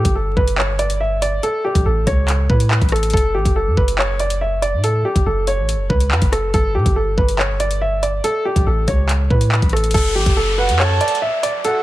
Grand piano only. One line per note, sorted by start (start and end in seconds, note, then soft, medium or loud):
0.00 0.14 G4 medium
0.15 0.35 A4 medium
0.37 0.56 B4 medium
0.58 0.78 C#5 medium
0.79 0.99 D5 medium
1.00 1.20 E5 medium
1.22 1.42 D5 medium
1.43 1.63 A4 loud
1.64 1.84 G4 medium
1.86 2.06 A4 medium
2.07 2.47 C#5 medium
2.50 2.90 B4 medium
2.92 3.12 A4 medium
3.13 3.33 A4 loud
3.35 3.54 G4 medium
3.56 3.76 A4 medium
3.77 3.97 B4 medium
3.99 4.18 C#5 medium
4.20 4.40 D5 medium
4.41 4.61 E5 medium
4.62 4.82 D5 medium
4.84 5.04 A4 loud
5.05 5.25 G4 medium
5.26 5.46 A4 medium
5.47 5.87 C#5 medium
5.90 6.30 B4 medium
6.32 6.52 A4 medium
6.54 6.74 A4 loud
6.75 6.95 G4 medium
6.96 7.16 A4 medium
7.17 7.37 B4 medium
7.39 7.59 C#5 medium
7.60 7.80 D5 medium
7.81 8.01 E5 medium
8.03 8.23 D5 medium
8.24 8.44 A4 loud
8.45 8.65 G4 medium
8.67 8.86 A4 medium
8.88 9.28 C#5 medium
9.30 9.70 B4 medium
9.73 9.93 A4 medium
9.94 10.14 A4 loud
10.15 10.35 G4 medium
10.37 10.57 A4 medium
10.58 10.78 B4 medium
10.80 10.99 C#5 medium
11.01 11.21 D5 medium
11.22 11.42 E5 medium
11.43 11.63 D5 medium
11.65 11.83 A4 loud